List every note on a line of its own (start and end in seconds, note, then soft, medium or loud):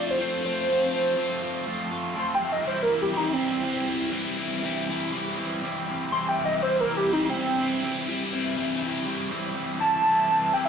0.00 0.17 F3 medium
0.00 0.17 A3 medium
0.00 0.19 C4 medium
0.00 0.19 F4 medium
0.10 0.44 C5 medium
0.18 0.67 F3 medium
0.18 0.44 A3 loud
0.18 0.44 C4 medium
0.18 0.42 F4 medium
0.44 0.68 A3 medium
0.44 0.69 C4 medium
0.44 0.69 F4 medium
0.44 1.88 C5 loud
0.69 1.15 F3 loud
0.69 0.94 A3 medium
0.69 0.93 C4 medium
0.69 0.92 F4 loud
0.93 1.17 A3 medium
0.93 1.18 C4 medium
0.93 1.18 F4 medium
1.16 1.42 F3 medium
1.16 1.42 A3 medium
1.16 1.42 C4 medium
1.16 1.40 F4 medium
1.42 1.65 F3 medium
1.42 1.66 A3 medium
1.42 1.67 C4 medium
1.42 1.67 F4 medium
1.66 2.14 F3 medium
1.66 1.91 A3 medium
1.66 1.91 C4 medium
1.66 1.89 F4 medium
1.91 2.15 A3 medium
1.91 2.17 C4 medium
1.91 2.16 F4 medium
2.15 2.63 F3 medium
2.15 2.42 A3 medium
2.15 2.41 C4 loud
2.15 2.40 F4 loud
2.15 2.34 C6 loud
2.35 2.50 G5 medium
2.41 2.65 A3 medium
2.41 2.65 C4 medium
2.41 2.64 F4 medium
2.52 2.67 D#5 medium
2.63 3.39 C3 medium
2.63 3.12 E3 medium
2.63 2.89 G3 medium
2.63 2.89 C4 medium
2.63 2.87 E4 loud
2.67 2.82 C5 medium
2.83 2.98 A#4 medium
2.87 3.12 G3 medium
2.87 3.13 C4 medium
2.87 3.13 E4 medium
3.02 3.16 G4 medium
3.12 3.39 E3 medium
3.12 3.38 G3 medium
3.12 3.38 C4 medium
3.12 3.37 E4 medium
3.17 3.32 D#4 medium
3.34 4.28 C4 medium
3.34 3.64 E4 medium
3.38 4.10 C3 medium
3.38 3.63 E3 medium
3.38 3.64 G3 medium
3.38 3.64 C4 medium
3.63 4.11 E3 medium
3.63 3.88 G3 medium
3.63 3.87 C4 medium
3.63 3.87 E4 medium
3.87 4.11 G3 medium
3.87 4.11 C4 medium
3.87 4.13 E4 medium
4.10 4.62 C3 medium
4.10 4.63 E3 medium
4.10 4.39 G3 medium
4.10 4.38 C4 loud
4.10 4.37 E4 loud
4.38 4.64 G3 medium
4.38 4.64 C4 medium
4.38 4.65 E4 medium
4.62 5.39 C3 medium
4.62 5.13 E3 medium
4.62 4.91 G3 medium
4.62 4.90 C4 loud
4.62 4.89 E4 loud
4.89 5.13 G3 medium
4.89 5.14 C4 medium
4.89 5.15 E4 medium
5.13 5.38 E3 medium
5.13 5.37 G3 medium
5.13 5.37 C4 medium
5.13 5.37 E4 medium
5.37 6.12 C3 medium
5.37 5.61 E3 medium
5.37 5.63 G3 medium
5.37 5.63 C4 medium
5.37 5.64 E4 medium
5.62 6.12 E3 medium
5.62 5.90 G3 medium
5.62 5.89 C4 medium
5.62 5.87 E4 medium
5.87 6.13 G3 medium
5.87 6.13 C4 medium
5.87 6.14 E4 medium
6.12 6.61 C3 medium
6.12 6.62 E3 medium
6.12 6.39 G3 medium
6.12 6.38 C4 loud
6.12 6.37 E4 loud
6.12 6.27 C6 loud
6.28 6.44 G5 loud
6.37 6.62 G3 medium
6.37 6.63 C4 medium
6.37 6.63 E4 medium
6.45 6.60 D#5 medium
6.61 7.36 C3 medium
6.61 7.10 E3 medium
6.61 6.87 G3 medium
6.61 6.86 C4 loud
6.61 6.85 E4 loud
6.61 6.77 C5 loud
6.80 6.94 A#4 medium
6.86 7.11 G3 medium
6.86 7.11 C4 medium
6.86 7.12 E4 medium
6.97 7.11 G4 medium
7.10 7.35 E3 medium
7.10 7.35 G3 medium
7.10 7.34 C4 medium
7.10 7.27 D#4 medium
7.10 7.34 E4 medium
7.29 8.23 C4 loud
7.34 8.08 C3 medium
7.34 7.58 E3 medium
7.34 7.59 G3 medium
7.34 7.60 C4 medium
7.34 7.61 E4 medium
7.59 8.08 E3 medium
7.59 7.85 G3 medium
7.59 7.84 C4 medium
7.59 7.83 E4 medium
7.83 8.09 G3 medium
7.83 8.09 C4 medium
7.83 8.09 E4 medium
8.08 8.56 C3 medium
8.08 8.56 E3 medium
8.08 8.34 G3 loud
8.08 8.33 C4 loud
8.08 8.32 E4 loud
8.32 8.57 G3 medium
8.32 8.57 C4 medium
8.32 8.58 E4 medium
8.56 9.32 C3 medium
8.56 9.06 E3 medium
8.56 8.84 G3 loud
8.56 8.83 C4 loud
8.56 8.82 E4 loud
8.83 9.07 G3 medium
8.83 9.08 C4 medium
8.83 9.08 E4 medium
9.06 9.32 E3 medium
9.06 9.31 G3 medium
9.06 9.31 C4 medium
9.06 9.30 E4 medium
9.30 10.03 C3 medium
9.30 9.55 E3 medium
9.30 9.55 G3 medium
9.30 9.55 C4 medium
9.30 9.57 E4 medium
9.55 10.03 E3 medium
9.55 9.81 G3 medium
9.55 9.79 C4 medium
9.55 9.79 E4 medium
9.79 10.05 G3 medium
9.79 10.05 C4 medium
9.79 10.05 E4 medium
9.79 10.51 A5 loud
10.03 10.52 C3 medium
10.03 10.53 E3 loud
10.03 10.31 G3 loud
10.03 10.31 C4 loud
10.03 10.29 E4 loud
10.29 10.54 G3 medium
10.29 10.54 C4 medium
10.29 10.54 E4 medium
10.53 10.69 C3 loud
10.53 10.69 E3 loud
10.53 10.69 G3 loud
10.53 10.69 C4 loud
10.53 10.69 E4 loud
10.53 10.65 G5 medium
10.65 10.69 E5 medium